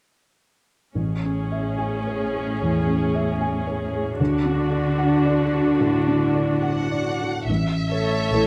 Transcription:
0.95 A1 A2 C#4 G#4
1.24 C#4
1.52 E5
1.79 G#5
2.07 C#5
2.35 G#4
2.62 E2
2.87 C#4
3.15 E5
3.41 G#5
3.67 C#5
3.93 G#4
4.20 D2 D3 D4 F#4
4.45 D4
4.72 D5
4.98 F#5
5.25 D5
5.53 F#4
5.80 A2
6.07 D4
6.35 D5
6.62 F#5
6.91 D5
7.21 F#4
7.47 A1 A2 E5
7.90 A3 A4 C#5
8.32 A1 A2 E4 A4 C#5

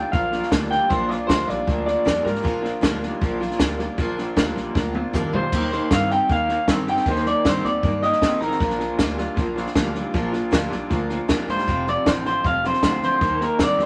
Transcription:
Already playing: A#2 G3 A#3 D4 F4 G5
0.12 A#1 A#2 F3 A#3 D4 F4 F5, kick, snare
0.31 A#2 F3 A#3 D4 F4, snare
0.43 snare
0.51 D2 A#2 F3 G3 A#3 D4 F4, kick, snare, hi-hat pedal
0.70 A#2 G3 A#3 D4 F4 G5, snare
0.90 A#1 A#2 F3 A#3 D4 F4 C5, kick, snare
1.09 A#2 F3 A#3 D4 F4 D5, snare
1.27 D2 A#2 F3 G3 A#3 D4 F4 C5, kick, snare, hi-hat pedal
1.47 A#1 A#2 G3 A#3 D4 F4 D5, snare
1.67 D2 A#2 F3 A#3 D4 F4, kick, snare
1.86 A#2 F3 A#3 D4 F4 D5, snare
2.05 F2 A#2 F3 G3 A#3 D4 F4, kick, snare, hi-hat pedal
2.24 G#2 A#2 G3 A#3 D4 F4 A#4, snare
2.35 snare
2.42 A#1 A#2 F3 A#3 D4 F4, kick, snare
2.61 A#2 F3 A#3 D4 F4, snare
2.81 D2 A#2 F3 G3 A#3 D4 F4, kick, snare, hi-hat pedal
3.02 A#2 G3 A#3 D4 F4, snare
3.21 A#1 A#2 F3 A#3 D4 F4, kick, snare
3.40 A#2 F3 A#3 D4 F4, snare
3.51 snare
3.59 D2 A#2 F3 G3 A#3 D4 F4, kick, snare, hi-hat pedal
3.79 A#2 G3 A#3 D4 F4, snare
3.97 A#1 A#2 F3 A#3 D4 F4, kick, snare
4.17 A#2 F3 A#3 D4 F4, snare
4.36 D2 A#2 F3 G3 A#3 D4 F4, kick, snare, hi-hat pedal
4.56 A#1 A#2 G3 A#3 D4 F4, snare
4.75 D2 A#2 F3 A#3 D4 F4, kick, snare
4.94 A#2 F3 A#3 D4 F4, high tom
5.13 F2 A#2 F3 G3 A#3 D4 F4, kick, hi-hat pedal, mid tom
5.32 F2 A#2 G3 A#3 D4 F4 C5, floor tom
5.52 D#2 D#3 A#3 D#4 G4, kick, snare, crash
5.72 D#3 A#3 D#4 G4 C5, snare
5.91 G2 D#3 A#3 C4 D#4 G4 F5, kick, snare, hi-hat pedal
6.10 D#3 A#3 C4 D#4 G4 G5, snare
6.29 D#2 D#3 A#3 D#4 G4 F5, kick, snare
6.49 D#3 A#3 D#4 G4, snare
6.68 G2 D#3 A#3 C4 D#4 G4, kick, snare, hi-hat pedal
6.87 D#3 A#3 C4 D#4 G4 G5, snare
6.97 snare
7.05 D#2 D#3 A#3 D#4 G4 C5, kick, snare
7.16 snare
7.25 D#3 A#3 D#4 G4 D5, snare
7.45 G2 D#3 A#3 C4 D#4 G4 C5, kick, snare, hi-hat pedal
7.62 D#2 D#3 C4 D#4 G4 D5, snare
7.67 A#3
7.83 G2 D#3 A#3 D#4 G4, kick, snare
8.02 D#3 A#3 D#4 G4 D#5, snare
8.12 snare
8.22 A#2 D#3 A#3 C4 D#4 G4, kick, snare, hi-hat pedal
8.40 A1 D#3 A#3 C4 D#4 G4 A#4, snare
8.51 snare
8.60 A#1 A#2 F3 A#3 D4 F4, kick, snare
8.70 snare
8.79 A#2 F3 A#3 D4 F4, snare
8.98 D2 A#2 F3 G3 A#3 D4 F4, kick, snare, hi-hat pedal
9.17 A#2 G3 A#3 D4 F4, snare
9.35 A#1 A#2 F3 A#3 D4 F4, kick, snare
9.56 A#2 F3 A#3 D4 F4, snare
9.66 snare
9.75 D2 A#2 F3 G3 A#3 D4 F4, kick, snare, hi-hat pedal
9.94 A#2 G3 A#3 D4 F4, snare
10.14 A#1 A#2 F3 A#3 D4 F4, kick, snare
10.32 A#2 F3 A#3 D4 F4, snare
10.51 D2 A#2 F3 G3 A#3 D4 F4, kick, snare, hi-hat pedal
10.70 A#1 A#2 G3 A#3 D4 F4, snare
10.89 D2 A#2 F3 A#3 D4 F4, kick, snare
11.09 A#2 F3 A#3 D4 F4, snare
11.28 F2 A#2 F3 G3 A#3 D4 F4, kick, snare, hi-hat pedal
11.48 G#2 A#2 G3 A#3 D4 F4 C5, snare
11.58 snare
11.67 F1 F2 C3 F3 A3 C4 F4, kick, snare
11.86 F2 C3 F3 A3 C4 F4 D5, snare
12.06 A1 F2 C3 D3 F3 A3 C4 F4 C5, kick, snare, hi-hat pedal
12.25 F2 D3 F3 A3 C4 F4 C5, snare
12.44 F1 F2 C3 F3 A3 C4 F4 F5, kick, snare
12.64 F2 C3 F3 A3 C4 F4 C5, snare
12.73 snare
12.81 D2 F2 C3 D3 F3 A3 C4 F4, kick, snare, hi-hat pedal
13.01 F2 D3 F3 A3 C4 F4 C5, snare
13.21 D#2 D#3 A#3 D#4 G4, kick, snare
13.41 D#3 A#3 D#4 G4 A#4, snare
13.59 G2 D#3 A#3 C4 D#4 G4, kick, snare, hi-hat pedal
13.63 D5
13.78 D#2 D#3 C4 D#4 G4, snare
13.82 A#3

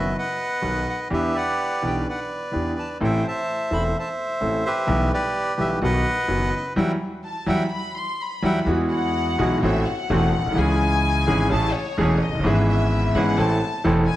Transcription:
Already playing: F#1 F#2 D#3 F#3 B3 F#4 B4 D#5 E5
0.18 B4 D#5 F#5
0.62 B1 B2 D#3 F#3 B3 F#4
0.90 F#5
1.10 E2 E3 B3 D4 G4 B4 E5
1.35 B4 D5 F#5
1.82 B1 B2 E3 B3 D4 G4
1.87 G5
2.08 B4 D5 F#5
2.51 E2 E3 B3 D4 G4
2.79 A5
3.00 A1 A2 E3 A3 C4 A4 C5 E5 G5
3.27 C5 E5 A5
3.71 E1 E2 E3 A3 C4 A4 B5
3.98 C5 E5 A5
4.41 A1 A2 E3 A3 C4 A4
4.66 G4 B4 E5
4.87 B1 B2 E3 G3 B3 G4
5.13 G4 B4 D5
5.58 B1 B2 E3 G3 B3 G4 E5
5.81 B1 B2 D#3 F#3 B3 F#4 B4 D#5 F#5
6.28 F#1 F#2 D#3 F#3 B3 F#4
6.56 D#5
6.76 E2 E3 F#3 G3 E5 F#5 G5
7.24 A5
7.46 E2 E3 F#3 G3 E5 F#5 G5 B5
7.71 B5
7.95 C6
8.20 B5
8.42 E2 E3 F#3 G3 E5 F#5 G5
8.65 E2 E3 G#3 B3 E4 F#4 G#4
8.91 F#5
9.38 B1 B2 E3 G#3 B3 E4 F#4 G#4
9.62 A1 A2 E3 A3 C4 F#4 A4 E5
9.87 F#5
10.10 E1 E2 E3 A3 C4 F#4 A4
10.39 A#1
10.45 B1
10.50 C2 E3
10.55 C#2 C#3 G#3 C#4 E4 G#4 G#5
11.27 G#1 G#2 E3 G#3 C#4 E4 G#4
11.49 A1 A2 E3 A3 C#4 G#4 A4
11.54 A5
11.73 C#5
11.97 E1 E2 E3 A3 C#4 G#4 A4
12.22 D#5
12.28 F1
12.33 F#1
12.39 G1 E3
12.43 G#1 G#2 B3 C#4 E4 G#4 B4 E5
12.70 E5
13.15 G#1 G#2 E3 B3 C#4 E4 G#4 B4 F#5
13.37 A1 A2 E3 A3 C4 E4 A4 A5
13.84 E1 E2 E3 A3 C4 E4 A4
14.08 G#5

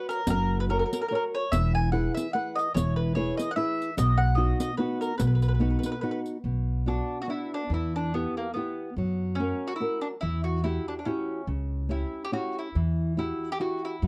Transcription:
Already playing: F#4 B4 C#5
0.09 A#4, riq
0.27 F#1 F#3 A#4, riq
0.60 B4
0.69 F#4 A#4 C#5
0.79 A#4
0.86 A#4
0.93 A#4, riq
1.02 A#4
1.08 F#4 A#4 C#5
1.15 A#4
1.35 C#5
1.52 E1 E3 E5, riq
1.75 G#5
1.92 E4 G#4 B4 F#5
2.15 E5, riq
2.33 E4 G#4 B4 F#5
2.56 D#5, riq
2.74 E1 E3 C#5, riq
2.96 B4
3.15 E4 G#4 B4 C#5
3.37 D#5, riq
3.51 F#5
3.56 E4 G#4 B4 E5
3.82 riq
3.97 B1 B2 D#5, riq
4.18 F#5
4.35 B3 D#4 F#4 D#5
4.60 D#5, riq
4.77 B3 D#4 F#4 B4
5.01 A#4, riq
5.18 B1 B2 B4, riq
5.27 B4
5.35 B4
5.42 B4, riq
5.48 B4
5.60 B3 D#4 F#4 B4
5.70 B4
5.79 B4
5.83 B4, riq
5.92 B4
6.01 B3 D#4 F#4 B4
6.11 B4
6.26 riq
6.44 B1 B2
6.86 B3 D4 F#4
7.22 F#4
7.27 B3 D4 E4 F#4
7.54 D4
7.70 E2 E3
7.74 E4
7.96 D4
8.14 B3 E4 G4
8.37 A#3
8.54 B3 E4 G4
8.97 F#2 F#3
9.35 C#4
9.40 C#4 F#4 A#4
9.67 F#4
9.76 E4
9.80 C#4 F#4 A#4
10.01 D4
10.21 E2 E3 E4
10.44 F#4
10.63 E4 F#4 G4
10.88 D4
10.99 D4
11.05 C#4 E4 F#4 G4
11.47 C#2 C#3
11.89 C#4 E4 G4
12.25 G4
12.32 C#4 E4 F#4 G4
12.59 E4
12.75 E2 E3
13.17 E4 F#4 G4
13.52 G4
13.60 E4 F#4 G4
13.85 E4
14.02 F#2 F#3

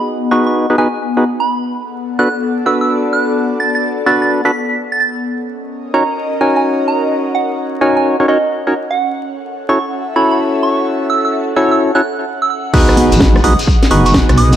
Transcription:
Already playing: B3 D#4 F#4 G#4 B4 D#5 F#5
0.31 B3 D#4 F#4 G#4 B4 C#6
0.47 C#6
0.70 B3 D#4 F#4 G#4 B4
0.78 B3 D#4 F#4 G#4 B4 G#5
1.17 B3 D#4 F#4 G#4 B4
1.40 B5
1.65 A4
1.95 D5
2.19 B3 D4 F#4 A4 B4 F#6
2.66 B3 D4 F#4 A4 B4 E6
2.81 E6
3.13 F#6
3.60 A6
3.75 A6
4.06 B3 D4 F#4 A4 B4 A6
4.22 A6
4.45 B3 D4 F#4 A4 B4 B6
4.92 A6
5.00 A6
5.24 C#4
5.49 D#5
5.53 A#4
5.94 C#4 D#4 F#4 A#4 C#5 A#5
6.41 C#4 D#4 F#4 A#4 C#5 G#5
6.45 F#5
6.56 G#5
6.88 A#5
7.35 F#5
7.81 C#4 D#4 F#4 A#4 C#5 G#5
7.97 G#5
8.20 C#4 D#4 F#4 A#4 C#5
8.28 C#4 D#4 F#4 A#4 C#5 D#5
8.67 C#4 D#4 F#4 A#4 C#5
8.91 F#5
9.17 A4
9.56 E5
9.69 C#4 E4 F#4 A4 C#5 C#6
10.16 C#4 E4 F#4 A4 C#5 B5
10.31 B5
10.63 C#6
11.10 E6
11.25 E6
11.56 C#4 E4 F#4 A4 C#5 E6
11.71 E6
11.95 C#4 E4 F#4 A4 C#5 F#6
12.42 E6
12.50 E6
12.74 B3 D#4 F#4 G#4 B4, kick, crash, impact, shekere
12.89 cross-stick, shekere
12.94 G#4, open hi-hat, high conga
13.12 G#1, closed hi-hat, shekere
13.19 D#5, kick, snare
13.36 cross-stick, shekere
13.44 B1 B3 D#4 F#4 G#4 B4 D#6, open hi-hat
13.59 closed hi-hat, shekere
13.67 kick, shekere
13.83 snare, closed hi-hat, shekere
13.91 F#1 B3 D#4 F#4 G#4 B4 C#6, open hi-hat
14.06 C#6, closed hi-hat, shekere
14.14 kick, snare, shekere
14.29 B1, cross-stick, closed hi-hat, shekere
14.38 D#6, open hi-hat
14.53 G#1, closed hi-hat, high conga, shekere

